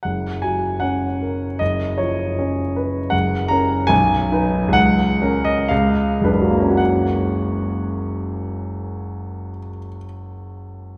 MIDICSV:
0, 0, Header, 1, 2, 480
1, 0, Start_track
1, 0, Key_signature, 6, "major"
1, 0, Tempo, 773196
1, 22, Time_signature, 2, 2, 24, 8
1, 2421, Tempo, 849858
1, 2901, Tempo, 955414
1, 3381, Tempo, 1086957
1, 3861, Tempo, 1048951
1, 5301, Tempo, 1098901
1, 5753, End_track
2, 0, Start_track
2, 0, Title_t, "Grand piano"
2, 0, Program_c, 0, 0
2, 16, Note_on_c, 0, 78, 54
2, 31, Note_on_c, 0, 30, 38
2, 152, Control_c, 0, 64, 127
2, 260, Note_on_c, 0, 80, 58
2, 263, Note_off_c, 0, 78, 0
2, 274, Note_on_c, 0, 54, 28
2, 495, Note_on_c, 0, 78, 64
2, 505, Note_off_c, 0, 80, 0
2, 506, Note_on_c, 0, 61, 33
2, 657, Note_off_c, 0, 54, 0
2, 751, Note_on_c, 0, 70, 34
2, 897, Note_off_c, 0, 61, 0
2, 976, Note_off_c, 0, 30, 0
2, 988, Note_on_c, 0, 75, 64
2, 989, Note_off_c, 0, 78, 0
2, 996, Note_off_c, 0, 70, 0
2, 998, Note_on_c, 0, 30, 44
2, 1008, Control_c, 0, 64, 0
2, 1103, Control_c, 0, 64, 127
2, 1227, Note_on_c, 0, 73, 55
2, 1235, Note_off_c, 0, 75, 0
2, 1241, Note_on_c, 0, 53, 33
2, 1482, Note_on_c, 0, 61, 36
2, 1619, Note_off_c, 0, 53, 0
2, 1716, Note_on_c, 0, 71, 41
2, 1852, Note_off_c, 0, 61, 0
2, 1918, Note_off_c, 0, 30, 0
2, 1925, Note_on_c, 0, 78, 75
2, 1936, Note_off_c, 0, 73, 0
2, 1936, Note_on_c, 0, 30, 49
2, 1944, Note_off_c, 0, 71, 0
2, 1952, Control_c, 0, 64, 0
2, 2067, Control_c, 0, 64, 127
2, 2163, Note_on_c, 0, 82, 83
2, 2169, Note_off_c, 0, 78, 0
2, 2178, Note_on_c, 0, 61, 39
2, 2178, Note_on_c, 0, 70, 40
2, 2399, Note_off_c, 0, 61, 0
2, 2399, Note_off_c, 0, 70, 0
2, 2402, Note_on_c, 0, 80, 91
2, 2405, Note_off_c, 0, 30, 0
2, 2415, Note_off_c, 0, 82, 0
2, 2417, Note_on_c, 0, 35, 61
2, 2433, Control_c, 0, 64, 0
2, 2541, Control_c, 0, 64, 127
2, 2658, Note_on_c, 0, 63, 45
2, 2661, Note_on_c, 0, 71, 45
2, 2863, Note_on_c, 0, 37, 64
2, 2881, Note_off_c, 0, 63, 0
2, 2882, Note_off_c, 0, 71, 0
2, 2886, Note_off_c, 0, 35, 0
2, 2890, Note_on_c, 0, 78, 96
2, 2893, Note_off_c, 0, 80, 0
2, 2914, Control_c, 0, 64, 0
2, 3007, Control_c, 0, 64, 127
2, 3136, Note_on_c, 0, 61, 43
2, 3140, Note_on_c, 0, 70, 49
2, 3250, Note_on_c, 0, 75, 83
2, 3252, Note_off_c, 0, 78, 0
2, 3350, Note_off_c, 0, 37, 0
2, 3363, Note_off_c, 0, 61, 0
2, 3365, Note_off_c, 0, 70, 0
2, 3371, Note_on_c, 0, 77, 74
2, 3379, Note_off_c, 0, 75, 0
2, 3382, Note_on_c, 0, 37, 67
2, 3393, Control_c, 0, 64, 0
2, 3477, Control_c, 0, 64, 127
2, 3607, Note_on_c, 0, 30, 54
2, 3617, Note_on_c, 0, 62, 42
2, 3620, Note_on_c, 0, 71, 49
2, 3642, Note_off_c, 0, 37, 0
2, 3649, Note_on_c, 0, 37, 44
2, 3694, Note_on_c, 0, 54, 47
2, 3734, Note_on_c, 0, 58, 46
2, 3777, Note_on_c, 0, 61, 47
2, 3819, Note_on_c, 0, 66, 43
2, 3843, Note_off_c, 0, 62, 0
2, 3845, Note_off_c, 0, 71, 0
2, 3853, Note_on_c, 0, 78, 64
2, 3856, Note_off_c, 0, 77, 0
2, 3871, Control_c, 0, 64, 0
2, 3978, Control_c, 0, 64, 127
2, 5096, Note_off_c, 0, 30, 0
2, 5140, Note_off_c, 0, 37, 0
2, 5186, Note_off_c, 0, 54, 0
2, 5228, Note_off_c, 0, 58, 0
2, 5272, Note_off_c, 0, 61, 0
2, 5316, Note_off_c, 0, 66, 0
2, 5349, Note_off_c, 0, 78, 0
2, 5753, End_track
0, 0, End_of_file